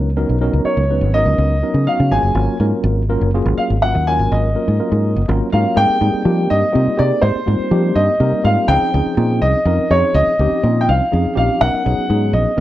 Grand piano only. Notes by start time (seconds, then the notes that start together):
0.65 C#5
1.14 D#5
1.87 F5
2.12 G#5
3.58 F5
3.82 F#5
4.07 G#5
4.32 D#5
5.52 F5
5.77 G5
6.50 D#5
6.99 D5
7.21 C5
7.95 D#5
8.45 F5
8.68 G5
9.42 D#5
9.91 C#5
10.15 D#5
10.81 G5
10.89 F5
11.37 F5
11.61 F#5
12.33 D#5